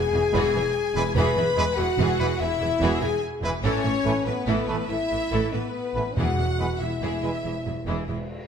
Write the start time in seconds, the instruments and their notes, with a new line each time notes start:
Already playing: french horn section G#4, violin section G#5
0.13 double bass section E1, cello section E2, viola section E3 G#4, violin section B4 E5
0.33 double bass section E1, cello section E2, trombone section E3 G#3, viola section E3 G#4, violin section F#4 G#4, trumpet B4
0.54 double bass section E1, cello section E2, viola section E3 G#4, violin section B4 E5
0.95 double bass section E1, cello section E2, trombone section E3 G#3, viola section E3 G#4, trumpet B4, violin section B4 E5
1.15 double bass section E1, cello section E2, viola section E3 G#4, violin section F#4 G#4 B5, french horn section B4
1.36 double bass section E1, cello section E2, viola section E3 G#4, violin section B4 E5
1.57 double bass section E1, cello section E2, trombone section E3 G#3, viola section E3 G#4, violin section G#4, trumpet B4
1.77 double bass section E1, cello section E2, viola section E3 G#4, french horn section F#4, violin section B4 E5 F#5
1.98 double bass section E1, cello section E2, viola section E3 G#4, violin section F#4 G#4
2.19 double bass section E1, cello section E2, viola section E3 G#4, trombone section E3 G#3, violin section B4 E5, trumpet B4
2.40 double bass section E1, cello section E2, viola section E3 G#4, french horn section E4, violin section G#4 B4 E5
2.60 double bass section E1, cello section E2, viola section E3 G#4, violin section B4 E5
2.81 double bass section E1, cello section E2, viola section E3 G#4, trombone section E3 G#3, violin section F#4 G#4, trumpet B4
3.01 double bass section E1, cello section E2, viola section E3 G#4, french horn section G#4, violin section B4 E5 G#5
3.42 double bass section E1, cello section E2, trombone section E3 G#3, viola section E3 G#4, violin section B4 E5, trumpet B4
3.63 double bass section A1, cello section A2, viola section E3 A4, french horn section C#4, violin section E4 A4 C#5
3.84 double bass section A1, cello section A2, viola section E3 A4, violin section B4 E5
4.04 double bass section A1, cello section A2, viola section E3 A4, trombone section E3 A3, violin section A4 B4, trumpet B4
4.25 double bass section A1, cello section A2, viola section E3 A4, french horn section B3, violin section B4 E5
4.47 double bass section A1, cello section A2, viola section E3 A4, violin section E4 A4
4.68 double bass section A1, cello section A2, trombone section E3 A3, viola section E3 A4, violin section B4 E5, trumpet B4
4.89 double bass section A1, cello section A2, viola section E3 A4, french horn section E4, violin section A4 B4 E5
5.10 double bass section A1, cello section A2, viola section E3 A4, violin section B4 E5
5.31 double bass section A1, cello section A2, viola section E3 A4, trombone section E3 A3, violin section E4 A4, trumpet B4
5.52 double bass section A1, cello section A2, viola section E3 A4, french horn section B3, violin section B4 E5
5.95 double bass section A1, cello section A2, trombone section E3 A3, viola section E3 A4, trumpet B4, violin section B4 E5
6.16 double bass section E1, timpani E2, cello section E2, viola section E3 G#4, violin section E4 G#4 F#5, french horn section F#4
6.38 double bass section E1, cello section E2, viola section E3 G#4, violin section B4 E5
6.58 double bass section E1, cello section E2, trombone section E3 G#3, viola section E3 G#4, violin section G#4 B4, trumpet B4
6.80 double bass section E1, cello section E2, viola section E3 G#4, french horn section E4, violin section B4 E5
7.01 double bass section E1, cello section E2, viola section E3 G#4, violin section E4 G#4
7.23 double bass section E1, cello section E2, trombone section E3 G#3, viola section E3 G#4, violin section B4 E5, trumpet B4
7.44 double bass section E1, cello section E2, viola section E3 G#4, violin section G#4 B4
7.65 double bass section E1, cello section E2, viola section E3 G#4, violin section B4 E5
7.87 double bass section E1, cello section E2, trombone section E3 G#3, viola section E3 G#4, violin section E4 G#4, trumpet B4
8.08 double bass section E1, cello section E2, viola section E3 G#4, violin section B4 E5